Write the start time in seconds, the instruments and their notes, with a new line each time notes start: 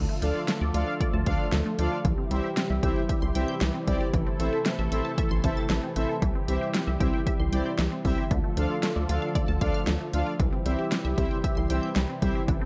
Already playing: analog synth pad D3 F3 A3 F4 A4
0.09 synth arpeggio sound A3
0.22 analog synth bass D2, synth arpeggio sound F3, analog polysynth D4 F4 A4 D5 F5, closed hi-hat
0.35 synth arpeggio sound F4
0.48 synth arpeggio sound A3, snare, closed hi-hat
0.61 analog synth bass D2, synth arpeggio sound D5
0.74 analog synth bass D2, analog polysynth D4 F4 A4 D5 F5, synth arpeggio sound F4, closed hi-hat
0.87 synth arpeggio sound F5
1.00 synth arpeggio sound D5, kick, closed hi-hat
1.13 analog synth bass D2, synth arpeggio sound A5
1.26 analog synth bass D2, analog polysynth D4 F4 A4 D5 F5, synth arpeggio sound F5, kick, closed hi-hat
1.40 synth arpeggio sound F6
1.52 analog synth bass D2, synth arpeggio sound D3, snare, closed hi-hat
1.66 synth arpeggio sound A3
1.79 analog synth bass D2, synth arpeggio sound F3, analog polysynth D4 F4 A4 D5 F5, closed hi-hat
1.92 synth arpeggio sound F4
2.05 analog synth bass C2, analog synth pad C3 E3 G3 E4 G4, synth arpeggio sound E3, kick, closed hi-hat
2.18 synth arpeggio sound C4
2.31 analog synth bass C2, synth arpeggio sound G3, analog polysynth C4 E4 G4 C5 E5, closed hi-hat
2.44 synth arpeggio sound G4
2.57 synth arpeggio sound C4, snare, closed hi-hat
2.70 analog synth bass C2, synth arpeggio sound E5
2.83 analog synth bass C2, analog polysynth C4 E4 G4 C5 E5, synth arpeggio sound G4, kick, closed hi-hat
2.96 synth arpeggio sound G5
3.09 synth arpeggio sound E5, kick, closed hi-hat
3.22 analog synth bass C2, synth arpeggio sound C6
3.35 analog synth bass C2, analog polysynth C4 E4 G4 C5 E5, synth arpeggio sound G5, closed hi-hat
3.48 synth arpeggio sound G6
3.61 analog synth bass C2, synth arpeggio sound E3, snare, closed hi-hat
3.74 synth arpeggio sound C4
3.87 analog synth bass C2, synth arpeggio sound G3, analog polysynth C4 E4 G4 C5 D5, kick, closed hi-hat
4.01 synth arpeggio sound G4
4.14 analog synth bass A1, synth arpeggio sound E3, analog synth pad A3 A4, kick, closed hi-hat
4.27 synth arpeggio sound C4
4.40 analog synth bass A1, synth arpeggio sound A3, analog polysynth C4 E4 A4 C5 E5, closed hi-hat
4.53 synth arpeggio sound A4
4.66 synth arpeggio sound C4, snare, closed hi-hat
4.79 analog synth bass A1, synth arpeggio sound E5
4.92 analog synth bass A1, analog polysynth C4 E4 A4 C5 E5, synth arpeggio sound A4, closed hi-hat
5.05 synth arpeggio sound A5
5.18 synth arpeggio sound E5, kick, closed hi-hat
5.31 analog synth bass A1, synth arpeggio sound C6
5.44 analog synth bass A1, analog polysynth C4 E4 A4 C5 E5, synth arpeggio sound A5, kick, closed hi-hat
5.57 synth arpeggio sound A6
5.70 analog synth bass A1, synth arpeggio sound E3, snare, closed hi-hat
5.83 synth arpeggio sound C4
5.96 analog synth bass A1, synth arpeggio sound A3, analog polysynth C4 E4 A4 C5 E5, closed hi-hat
6.09 synth arpeggio sound A4
6.22 analog synth bass C2, synth arpeggio sound E3, analog synth pad G3 G4, kick, closed hi-hat
6.35 synth arpeggio sound C4
6.48 analog synth bass C2, synth arpeggio sound G3, analog polysynth C4 E4 G4 C5 E5, closed hi-hat
6.61 synth arpeggio sound G4
6.74 synth arpeggio sound C4, snare, closed hi-hat
6.87 analog synth bass C2, synth arpeggio sound E5
7.00 analog synth bass C2, analog polysynth C4 E4 G4 C5 E5, synth arpeggio sound G4, kick, closed hi-hat
7.13 synth arpeggio sound G5
7.27 synth arpeggio sound E5, kick, closed hi-hat
7.40 analog synth bass C2, synth arpeggio sound C6
7.53 analog synth bass C2, analog polysynth C4 E4 G4 C5 D5, synth arpeggio sound G5, closed hi-hat
7.66 synth arpeggio sound G6
7.79 analog synth bass C2, synth arpeggio sound E3, snare, closed hi-hat
7.92 synth arpeggio sound C4
8.05 analog synth bass C2, synth arpeggio sound G3, analog polysynth C4 E4 G4 C5 E5, kick, open hi-hat
8.18 synth arpeggio sound G4
8.31 analog synth bass D2, synth arpeggio sound D3, analog synth pad D3 F3 A3 F4 A4, kick, closed hi-hat
8.44 synth arpeggio sound A3
8.57 analog synth bass D2, synth arpeggio sound F3, analog polysynth D4 F4 A4 D5 F5, closed hi-hat
8.70 synth arpeggio sound F4
8.83 synth arpeggio sound A3, snare, closed hi-hat
8.96 analog synth bass D2, synth arpeggio sound D5
9.09 analog synth bass D2, analog polysynth D4 F4 A4 D5 F5, synth arpeggio sound F4, closed hi-hat
9.22 synth arpeggio sound F5
9.35 synth arpeggio sound D5, kick, closed hi-hat
9.48 analog synth bass D2, synth arpeggio sound A5
9.61 analog synth bass D2, analog polysynth D4 F4 A4 D5 F5, synth arpeggio sound F5, kick, closed hi-hat
9.74 synth arpeggio sound F6
9.87 analog synth bass D2, synth arpeggio sound D3, snare, closed hi-hat
10.00 synth arpeggio sound A3
10.13 analog synth bass D2, synth arpeggio sound F3, analog polysynth D4 F4 A4 D5 F5, closed hi-hat
10.26 synth arpeggio sound F4
10.39 analog synth bass C2, analog synth pad C3 E3 G3 E4 G4, synth arpeggio sound E3, kick, closed hi-hat
10.53 synth arpeggio sound C4
10.66 analog synth bass C2, synth arpeggio sound G3, analog polysynth C4 E4 G4 C5 E5, closed hi-hat
10.79 synth arpeggio sound G4
10.92 synth arpeggio sound C4, snare, closed hi-hat
11.05 analog synth bass C2, synth arpeggio sound E5
11.18 analog synth bass C2, analog polysynth C4 E4 G4 C5 E5, synth arpeggio sound G4, kick, closed hi-hat
11.31 synth arpeggio sound G5
11.44 synth arpeggio sound E5, kick, closed hi-hat
11.57 analog synth bass C2, synth arpeggio sound C6
11.70 analog synth bass C2, analog polysynth C4 E4 G4 C5 E5, synth arpeggio sound G5, closed hi-hat
11.83 synth arpeggio sound G6
11.96 analog synth bass C2, synth arpeggio sound E3, snare, closed hi-hat
12.09 synth arpeggio sound C4
12.22 analog synth bass C2, synth arpeggio sound G3, analog polysynth C4 E4 G4 C5 E5, kick, closed hi-hat
12.35 synth arpeggio sound G4
12.48 analog synth bass A1, synth arpeggio sound E3, analog synth pad E3 A3 A4, kick, closed hi-hat
12.61 synth arpeggio sound C4